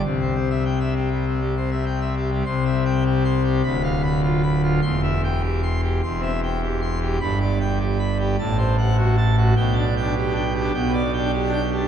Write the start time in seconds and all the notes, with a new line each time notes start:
0.04 C2 C3
0.21 C4
0.36 C5
0.50 E5
0.65 G5
0.80 E5
0.96 G4
1.11 G3
1.27 C4
1.41 G3
1.57 C5
1.71 E5
1.86 G5
2.01 E5
2.17 G4
2.32 G3
2.46 C2 C3 C6
2.66 E5
2.85 G5
3.05 G4
3.25 C6
3.44 G4
3.64 D1 D2 B5
3.83 F5
4.03 B5
4.23 F4
4.43 B5
4.63 F4
4.82 E1 E2 C6
5.03 E5
5.24 G5
5.43 G4
5.63 C6
5.84 G4
6.03 E1 E2 C6
6.18 C4
6.22 E5
6.43 G5
6.63 G4
6.82 C6
7.02 G4
7.20 G1 G2 B5
7.41 D5
7.60 G5
7.80 G4
7.99 B5
8.19 G4
8.39 A1 A2 A5
8.58 C5
8.78 F#5
8.98 F#4
9.17 A5
9.38 F#4
9.56 B1 B2 G5
9.71 D4
9.77 D5
9.97 G5
10.01 D4
10.16 G4
10.31 D4
10.35 G5
10.55 G4
10.60 D4
10.73 B1 B2 G5
10.89 B3
10.94 D5
11.13 G5
11.17 D4
11.32 G4
11.47 D4
11.52 G5
11.71 G4
11.76 D4